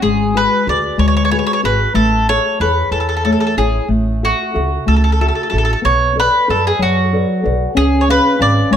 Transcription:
0.02 upright bass G#1, nylon-string guitar G#3, mandolin G#4
0.34 nylon-string guitar F#4 G#4 B4, mandolin B4
0.67 upright bass D2, nylon-string guitar F#4 G#4 B4, mandolin D5
0.97 upright bass D2, nylon-string guitar G#3, mandolin C#5
1.08 mandolin C#5
1.17 mandolin C#5
1.25 mandolin C#5
1.31 nylon-string guitar F#4 G#4 B4, mandolin C#5
1.39 mandolin C#5
1.47 mandolin C#5
1.53 mandolin C#5
1.63 upright bass G#1, nylon-string guitar F#4 G#4 B4, mandolin B4
1.94 upright bass A1, nylon-string guitar A3, mandolin A4
2.29 nylon-string guitar G#4 A4 C#5, mandolin C#5
2.60 upright bass E2, nylon-string guitar G#4 A4 C#5, mandolin B4
2.91 upright bass E2, nylon-string guitar E3, mandolin A4
3.00 mandolin A4
3.09 mandolin A4
3.17 mandolin A4
3.25 nylon-string guitar A3 G#4 C#5, mandolin A4
3.32 mandolin A4
3.40 mandolin A4
3.47 mandolin A4
3.57 upright bass A1, nylon-string guitar E4 G#4 C#5, mandolin G#4
3.88 upright bass A1, nylon-string guitar A3
4.23 nylon-string guitar F#4 A4 E5, mandolin F#4
4.54 upright bass C#2, nylon-string guitar F#4 A4 E5
4.86 upright bass C#2, nylon-string guitar A3, mandolin A4
4.96 mandolin A4
5.04 mandolin A4
5.12 mandolin A4
5.21 nylon-string guitar F#4 A4 E5, mandolin A4
5.28 mandolin A4
5.35 mandolin A4
5.43 mandolin A4
5.50 upright bass A1, nylon-string guitar F#4 A4 E5, mandolin A4
5.58 mandolin A4
5.65 mandolin A4
5.73 mandolin A4
5.82 upright bass B1, nylon-string guitar B3, mandolin C#5
6.16 nylon-string guitar A4 B4 D5, mandolin B4
6.48 upright bass F#2, nylon-string guitar A4 B4 D5, mandolin A4
6.67 mandolin G#4
6.79 upright bass F#2, nylon-string guitar F#3, mandolin F#4
7.13 nylon-string guitar A4 B4 D5
7.43 upright bass B1, nylon-string guitar A4 B4 D5
7.75 upright bass C#2, nylon-string guitar C#4, mandolin G#4
8.01 mandolin C#5
8.09 nylon-string guitar G#4 B4 F5, mandolin B4
8.39 upright bass G#1, nylon-string guitar C#4 B4 F5, mandolin D5
8.70 upright bass G#1, nylon-string guitar G#3, mandolin C#5

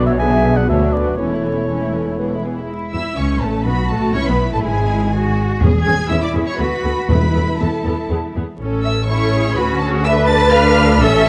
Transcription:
Already playing: double bass section B1, cello section B2, clarinet F#4
0.05 viola section F#3, violin section D4 F#4, flute section C#5, cor anglais E5
0.18 viola section D3, violin section B3 D4, clarinet G#4, flute section E5, cor anglais G#5
0.30 viola section F#3, violin section D4 F#4
0.43 viola section D3, violin section B3 D4
0.55 viola section F#3, violin section D4 F#4, flute section D5, cor anglais F#5
0.68 cello section D2, double bass section D2, viola section D3, violin section B3 D4, french horn section B3 F#4, clarinet F#4, flute section C#5, cor anglais E5
0.81 viola section F#3, violin section D4 F#4
0.93 viola section D3, violin section B3 D4, flute section B4, cor anglais D5
1.06 viola section F#3, violin section D4 F#4
1.17 double bass section E1, cello section E2, viola section E3, french horn section A3 A4, violin section C#4 A4, clarinet E4, flute section A4, cor anglais C#5
1.30 viola section A3, violin section E4
1.43 viola section E3, violin section C#4 A4
1.56 viola section A3, violin section E4
1.69 viola section E3, violin section C#4 A4
1.81 viola section A3, violin section E4
1.94 viola section E3, violin section C#4 A4
2.06 viola section A3, violin section E4
2.18 viola section E3, french horn section G#3 B4, violin section B3 G#4
2.32 viola section G#3, violin section E4
2.44 viola section E3, violin section B3 G#4
2.57 viola section G#3, violin section E4
2.69 cello section E4
2.93 double bass section E2, viola section E4, violin section E5 E6
3.17 double bass section C#2, cello section C#4, viola section C#4, violin section C#5 C#6
3.42 double bass section A1, viola section A3, violin section A4 A5
3.66 double bass section B1, viola section B3, cello section F#4, violin section B4 B5
3.91 double bass section A1, viola section A3, violin section A4 A5
4.15 double bass section C#2, viola section C#4, cello section E4, violin section C#5 C#6
4.28 double bass section B1, viola section B3, violin section B4 B5
4.53 double bass section A1, viola section A3, violin section A4 A5
4.65 double bass section G#1, viola section G#3, violin section G#4 G#5
5.13 cello section F#4
5.61 timpani E2, double bass section E2, viola section C#4 G#4, cello section G#4
5.85 double bass section E2, viola section C#4 G#4, violin section G#5 G#6
6.10 double bass section E2, viola section C#4 G#4, cello section E4, violin section E5 E6
6.22 violin section D5 D6
6.34 double bass section E2, viola section C#4 G#4
6.46 violin section C#5 C#6
6.58 double bass section D2, viola section B3 A4, cello section F#4, violin section B4 B5
6.83 double bass section D2, viola section B3 A4
7.08 double bass section E2, timpani E2, viola section B3 A4, cello section E4, violin section B4 B5
7.34 double bass section E2, viola section B3 A4
7.59 double bass section E2, viola section B3 A4, violin section A4 A5
7.85 double bass section E2, viola section B3 A4
8.10 double bass section E2, viola section B3 G#4
8.35 double bass section E2, viola section B3 G#4
8.60 double bass section A1, viola section C#4 A4
8.84 violin section E5 E6
9.07 viola section C#4 A4, cello section E4, violin section C#5 C#6
9.33 viola section G#4
9.57 double bass section D2, viola section C#4 F#4, cello section F#4, violin section B4 B5
9.80 viola section G#4, violin section A4 A5
10.04 viola section D4 A4, cello section B4, violin section E5 E6
10.29 violin section A5 A6
10.53 viola section D4 A4, violin section F5 F6
11.02 double bass section A1, viola section C#4 A4, cello section A4, violin section E5 E6

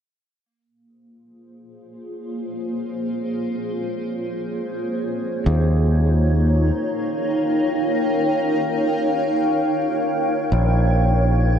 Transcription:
0.42 ambient pad A#3
0.66 ambient pad F4
0.73 ambient pad G#4
0.87 ambient pad C5
1.43 ambient pad C#5
5.46 fingered electric bass D#2, ambient pad D#4
5.80 ambient pad A#4
5.99 ambient pad F5
6.07 ambient pad G5
10.52 fingered electric bass A#1, ambient pad A#3
10.83 ambient pad F4 G#4
11.29 ambient pad C5

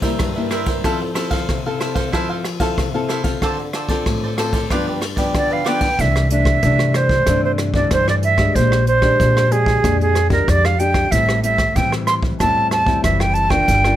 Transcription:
Already playing: nylon-string guitar C3
0.02 nylon-string guitar G3 A#3 E4, cavaquinho A#4 C5 E5, kick, ride
0.19 nylon-string guitar G2, kick, cross-stick, ride
0.36 nylon-string guitar G3 A#3 E4, cavaquinho A#4 C5 E5
0.50 cavaquinho E4 A#4 C5 E5, cross-stick, ride
0.66 cavaquinho A#4 C5 E5, kick, ride
0.84 nylon-string guitar F3 C4 E4 A4, cavaquinho E4 A4 C5 F5, kick, cross-stick, ride
1.02 muted cavaquinho stroke
1.14 nylon-string guitar C4 E4 A4, cavaquinho E4 A4 C5 F5, cross-stick, ride
1.30 cavaquinho A4 C5 F5, kick, ride
1.49 nylon-string guitar C3, kick, cross-stick, ride
1.66 nylon-string guitar C4 E4 A4, cavaquinho A4 C5 F5
1.79 cavaquinho E4 A4 C5 F5, cross-stick, ride
1.95 cavaquinho A4 C5 F5, kick, ride
2.12 nylon-string guitar F3 C4 E4 A4, cavaquinho E4 A4 C5 F5, kick, cross-stick, ride
2.29 cavaquinho A4 C5 F5
2.44 muted cavaquinho stroke, cross-stick, ride
2.60 nylon-string guitar C4 E4 A4, cavaquinho A4 C5 F5, kick, ride
2.78 nylon-string guitar C3, kick, cross-stick, ride
2.94 nylon-string guitar C4 E4 A4, cavaquinho A4 C5 F5
3.09 cavaquinho E4 A4 C5 F5, cross-stick, ride
3.24 nylon-string guitar C4 F4 A4, cavaquinho A4 C5 F5, kick, ride
3.42 nylon-string guitar D3, cavaquinho F4 A4 C5 D5, kick, cross-stick, ride
3.59 muted cavaquinho stroke
3.73 cavaquinho F4 A4 C5 D5, cross-stick, ride
3.89 nylon-string guitar C4 F4 A4, cavaquinho A4 C5 D5, kick, ride
4.06 nylon-string guitar A2, kick, cross-stick, ride
4.24 cavaquinho A4 C5 D5
4.38 nylon-string guitar C4 F4 A4, cavaquinho F4 A4 C5 D5, cross-stick, ride
4.53 cavaquinho A4 C5 D5, kick, ride
4.70 nylon-string guitar G2 F3 B3 D4, cavaquinho F4 G4 B4 D5, kick, cross-stick, ride
4.87 cavaquinho G4 B4 D5
5.01 muted cavaquinho stroke, cross-stick, ride
5.16 nylon-string guitar F3 B3 D4, cavaquinho G4 B4 D5, kick, ride
5.35 nylon-string guitar D3, flute D5, kick, cross-stick, ride
5.50 cavaquinho G4 B4 D5, flute F5
5.64 nylon-string guitar F3 B3 D4, cavaquinho F4 G4 B4 D5, cross-stick, ride
5.68 flute G5
5.81 cavaquinho G4 B4 D5, kick, ride
5.99 upright bass C2, nylon-string guitar C3 E3 A3 D4, flute E5, kick, closed hi-hat
6.16 cross-stick
6.30 nylon-string guitar E3 A3 D4, flute E5, closed hi-hat
6.45 kick, cross-stick, closed hi-hat
6.63 nylon-string guitar G2 E3 A3 D4, upright bass C3, kick, closed hi-hat
6.79 cross-stick
6.94 flute C5, cross-stick, closed hi-hat
7.09 kick
7.27 upright bass G2, nylon-string guitar C3 E3 A3 D4, kick, cross-stick, closed hi-hat
7.45 flute C5
7.58 cross-stick, closed hi-hat
7.74 nylon-string guitar E3 A3 D4, flute D5, kick
7.91 upright bass G2, nylon-string guitar G2, flute C5, kick, cross-stick, closed hi-hat
8.08 flute D5, cross-stick
8.23 flute E5, closed hi-hat
8.38 nylon-string guitar G#3 D4 G4, kick, cross-stick
8.55 upright bass A#1, nylon-string guitar A#2, flute C5, kick, closed hi-hat
8.72 cross-stick
8.87 flute C5, closed hi-hat
9.02 nylon-string guitar G#3 D4 G4, kick, cross-stick, closed hi-hat
9.20 nylon-string guitar F2, upright bass A#2, kick, closed hi-hat
9.37 cross-stick
9.51 nylon-string guitar G#3 D4 G4, flute G#4, closed hi-hat
9.66 kick
9.83 upright bass F2, nylon-string guitar A#2 G#3 D4 G4, kick, cross-stick, closed hi-hat
10.01 flute G#4, closed hi-hat
10.15 cross-stick, closed hi-hat
10.30 nylon-string guitar G#3 D4 G4, flute A#4, kick, closed hi-hat
10.47 nylon-string guitar F2, upright bass F2, flute D5, kick, cross-stick, closed hi-hat
10.65 flute F5, cross-stick, closed hi-hat
10.79 nylon-string guitar G#3 D4 G4, flute G5, closed hi-hat
10.94 kick, cross-stick
11.11 upright bass A1, nylon-string guitar A2 G3 C4 E4, flute E5, kick, closed hi-hat
11.29 cross-stick
11.43 nylon-string guitar G3 C4 E4, flute E5, closed hi-hat
11.58 kick, cross-stick, closed hi-hat
11.76 upright bass A2, nylon-string guitar E3 G3 C4 E4, flute G5, kick, closed hi-hat
11.92 cross-stick
12.07 flute C6, cross-stick, closed hi-hat
12.23 kick
12.40 upright bass E2, nylon-string guitar A2 G3 C4 E4, flute A5, kick, cross-stick, closed hi-hat
12.71 flute A5, cross-stick, closed hi-hat
12.87 nylon-string guitar G3 C4 E4, kick
13.04 upright bass F#1, nylon-string guitar E3, flute E5, kick, cross-stick, closed hi-hat
13.20 flute G5, cross-stick
13.34 flute A5, closed hi-hat
13.50 nylon-string guitar D4 F4 A#4, flute G5, kick, cross-stick
13.68 upright bass G1, nylon-string guitar G3, kick, closed hi-hat
13.84 nylon-string guitar D4 F4 A#4, cross-stick

